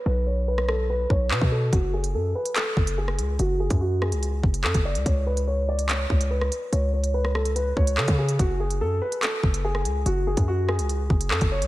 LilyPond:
<<
  \new Staff \with { instrumentName = "Grand piano" } { \time 4/4 \key fis \minor \tempo 4 = 144 b'8 cis''8 b'8 a'8 b'8 cis''8 b'8 a'8 | fis'8 gis'8 a'8 b'8 a'4 gis'4 | fis'8 gis'8 fis'8 gis'4. a'8 d''8 | cis''8 b'8 cis''8 d''8 cis''4 b'4 |
cis''8 cis''8 b'8 a'8 b'8 cis''8 a'8 gis'8 | fis'8 gis'8 a'8 b'8 a'4 gis'4 | fis'8 gis'8 fis'8 gis'4. a'8 cis''8 | }
  \new Staff \with { instrumentName = "808-style bass" } { \clef bass \time 4/4 \key fis \minor b,,2~ b,,8 b,,8 b,16 b,8. | fis,,4 fis,8 r4 fis,,4 cis,8 | fis,,8. fis,4 cis,8. fis,,8 fis,16 fis,,8 cis,16 | cis,2~ cis,8 cis,4 r8 |
cis,2~ cis,8 cis,8 cis16 cis8. | fis,,4 fis,8 r4 fis,,4 cis,8 | fis,,8. fis,4 cis,8. fis,,8 fis,16 fis,,8 cis,16 | }
  \new DrumStaff \with { instrumentName = "Drums" } \drummode { \time 4/4 r4 r16 ss16 ss8 r8 bd8 hc16 bd8. | <hh bd>8. hh16 r8. hh16 <hc hh>8 bd16 hh16 r16 ss16 hh8 | hh8. <hh bd>16 r8 ss16 hh16 hh8 bd16 hh16 hc16 <hh bd>8 hh16 | <hh bd>8. hh16 r8. hh16 <hc hh>8 bd16 hh16 r16 ss16 hh8 |
hh8. hh16 r16 ss16 ss16 hh16 hh8 bd16 hh16 hc16 <hh bd>8 hh16 | <hh bd>8. hh16 r8. hh16 <hc hh>8 bd16 hh16 r16 ss16 hh8 | hh8. <hh bd>16 r8 ss16 hh16 hh8 bd16 hh16 hc16 <hh bd>8 hh16 | }
>>